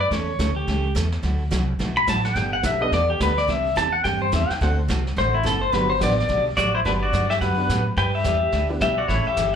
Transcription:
0.00 pedal steel guitar D5
0.11 upright bass E2, steel-string acoustic guitar C#3 E3 A3 C#4 A4, pedal steel guitar C#5, brush sweep, kick, snare
0.39 upright bass D2, steel-string acoustic guitar C#3 E3 A3 C#4 A4, kick, snare, hi-hat pedal
0.56 pedal steel guitar G4
0.67 upright bass C#2, steel-string acoustic guitar C#3 E3 A3 C#4 A4, brush sweep, kick, snare
0.95 upright bass E2, steel-string acoustic guitar C#3 E3 A3 C#4 A4, kick, snare, hi-hat pedal
1.12 snare
1.23 upright bass D2, steel-string acoustic guitar D3 F#3 A3 E4 F#4, brush sweep, kick, snare
1.51 upright bass C2, steel-string acoustic guitar D3 F#3 A3 E4 F#4, kick, snare, hi-hat pedal
1.79 upright bass B1, steel-string acoustic guitar D3 F#3 A3 E4 F#4, brush sweep, kick, snare
1.97 pedal steel guitar B5
2.07 upright bass A1, steel-string acoustic guitar D3 F#3 A3 E4 F#4, pedal steel guitar A5, kick, snare, hi-hat pedal
2.24 pedal steel guitar F#5, snare
2.35 upright bass G1, steel-string acoustic guitar G3 B3 D4 A4, pedal steel guitar G5, brush sweep, kick, snare
2.53 pedal steel guitar F#5
2.63 upright bass B1, steel-string acoustic guitar G3 B3 D4 A4, pedal steel guitar E5, kick, snare, hi-hat pedal
2.80 honky-tonk piano B3 D4 G4 A4 B4, pedal steel guitar D#5
2.92 upright bass E2, steel-string acoustic guitar G3 B3 D4 A4, pedal steel guitar D5, brush sweep, kick, snare
3.10 pedal steel guitar G4
3.20 upright bass D2, steel-string acoustic guitar G3 B3 D4 A4, pedal steel guitar B4, kick, snare, hi-hat pedal
3.38 pedal steel guitar D5, snare
3.47 upright bass C2, steel-string acoustic guitar C3 E3 D4 G4, pedal steel guitar E5, brush sweep, kick, snare
3.75 upright bass E2, steel-string acoustic guitar C3 E3 D4 G4, pedal steel guitar A5, kick, snare, hi-hat pedal
3.93 pedal steel guitar F#5
4.04 upright bass G2, steel-string acoustic guitar C3 E3 D4 G4, pedal steel guitar G5, brush sweep, kick, snare
4.22 pedal steel guitar C5
4.32 upright bass E2, steel-string acoustic guitar C3 E3 D4 G4, pedal steel guitar E5, kick, snare, hi-hat pedal
4.50 pedal steel guitar G5, muted upright bass stroke, snare
4.61 upright bass D2, steel-string acoustic guitar D3 A3 C4 F#4 A4, honky-tonk piano C4 D4 F#4 A4 C5, pedal steel guitar F#5, brush sweep, kick, snare
4.88 upright bass C2, steel-string acoustic guitar D3 A3 C4 F#4 A4, kick, snare, hi-hat pedal
5.07 snare
5.16 upright bass A1, steel-string acoustic guitar D3 A3 C4 F#4 A4, pedal steel guitar C5, brush sweep, kick, snare
5.34 pedal steel guitar E4
5.43 upright bass F#1, steel-string acoustic guitar D3 A3 C4 F#4 A4, pedal steel guitar A4, kick, snare, hi-hat pedal
5.61 pedal steel guitar C5
5.72 upright bass G1, steel-string acoustic guitar D3 F#3 B3 D4 G4, honky-tonk piano B3 D4 F#4 G4 B4, pedal steel guitar B4, brush sweep, kick, snare
5.90 pedal steel guitar C5
6.00 upright bass A1, steel-string acoustic guitar D3 F#3 B3 D4 G4, honky-tonk piano B3 D4 F#4 G4 B4, pedal steel guitar D5, kick, snare, hi-hat pedal
6.11 snare
6.18 pedal steel guitar D5, snare
6.29 upright bass B1, steel-string acoustic guitar D3 F#3 B3 D4 G4, brush sweep, kick, snare
6.57 upright bass A1, steel-string acoustic guitar D3 F#3 B3 D4 G4, pedal steel guitar F#4 D5, kick, snare, hi-hat pedal
6.75 pedal steel guitar E4 C5
6.85 upright bass G1, steel-string acoustic guitar D3 F#3 B3 D4 G4, pedal steel guitar D4 B4, brush sweep, kick, snare
7.03 pedal steel guitar F#4 D5
7.13 upright bass G2, steel-string acoustic guitar D3 F#3 B3 D4 G4, kick, snare, hi-hat pedal
7.30 pedal steel guitar G4 E5, snare
7.41 upright bass F#2, steel-string acoustic guitar D3 F#3 B3 D4 G4, pedal steel guitar B4 F#5, brush sweep, kick, snare
7.57 honky-tonk piano B3 D4 F#4 G4 B4
7.69 upright bass A2, steel-string acoustic guitar D3 F#3 B3 D4 G4, kick, snare, hi-hat pedal
7.97 upright bass G2, steel-string acoustic guitar G3 D4 E4 B4, pedal steel guitar B4 G5, brush sweep, kick, snare
8.15 pedal steel guitar G4 E5
8.24 upright bass E2, steel-string acoustic guitar G3 D4 E4 B4, kick, snare, hi-hat pedal
8.52 upright bass D2, steel-string acoustic guitar G3 D4 E4 B4, brush sweep, kick, snare
8.69 honky-tonk piano B3 D4 E4 G4 B4
8.81 upright bass B1, steel-string acoustic guitar G3 D4 E4 B4, pedal steel guitar G4 E5, kick, snare, hi-hat pedal
8.98 pedal steel guitar F#4 D5
9.08 upright bass A1, steel-string acoustic guitar C#3 E3 A3 C#4 A4, pedal steel guitar E4 C#5, brush sweep, kick, snare
9.26 pedal steel guitar G4 E5, muted upright bass stroke
9.37 upright bass G1, steel-string acoustic guitar C#3 E3 A3 C#4 A4, kick, snare, hi-hat pedal

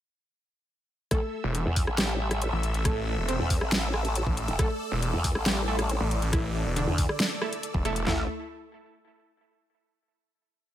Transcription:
1.11 wobble bass A1, synth pluck A3 A4, supersaw synth A4 E5 E6, kick, cross-stick, closed hi-hat
1.44 detuned saw bass E1
1.55 closed hi-hat
1.66 wobble bass E2
1.76 kick, open hi-hat
1.87 wobble bass A1, cross-stick
1.98 synth pluck G3 G4, cross-stick, snare, closed hi-hat
2.31 cross-stick, closed hi-hat
2.42 closed hi-hat
2.53 detuned saw bass A1
2.63 closed hi-hat
2.74 detuned saw bass A1, closed hi-hat
2.85 synth pluck A3 A4, kick, cross-stick, closed hi-hat
3.18 detuned saw bass E1
3.29 synth pluck C4 C5, closed hi-hat
3.40 wobble bass E2
3.50 kick, open hi-hat
3.61 wobble bass A1, cross-stick
3.72 snare, closed hi-hat
3.94 cross-stick
4.05 closed hi-hat
4.15 closed hi-hat
4.26 detuned saw bass A1, kick
4.37 closed hi-hat
4.48 wobble bass E1, closed hi-hat
4.59 wobble bass A1, synth pluck A3 A4, supersaw synth D5, kick, cross-stick, closed hi-hat
4.92 detuned saw bass E1
5.02 closed hi-hat
5.13 wobble bass E2
5.24 kick, open hi-hat
5.35 wobble bass A1, cross-stick
5.46 synth pluck G3 G4, cross-stick, snare, closed hi-hat
5.68 synth stab A3 E4 A4
5.79 cross-stick, closed hi-hat
5.89 closed hi-hat
6.00 detuned saw bass A1
6.11 closed hi-hat
6.22 detuned saw bass A1, closed hi-hat
6.33 synth pluck E3 E4, kick, cross-stick, closed hi-hat
6.66 detuned saw bass E1
6.76 synth pluck D3 D4, closed hi-hat
6.87 wobble bass E2
6.98 kick, open hi-hat
7.09 cross-stick
7.20 snare, closed hi-hat
7.42 synth stab A3 E4 A4, cross-stick
7.53 closed hi-hat
7.63 closed hi-hat
7.74 detuned saw bass E1, kick
7.85 synth stab A3 E4 A4, cross-stick, closed hi-hat
7.96 closed hi-hat
8.07 wobble bass A1, supersaw synth A3 A4 E5, synth stab A3 E4 A4, synth pluck E4, snare, clap, floor tom

